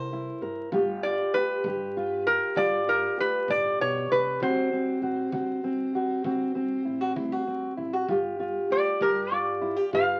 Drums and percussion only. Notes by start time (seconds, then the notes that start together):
0.72 kick
1.64 kick
2.56 kick
3.48 kick
4.40 kick
5.32 kick
6.24 kick
7.16 kick
8.09 kick
9.01 kick
9.93 kick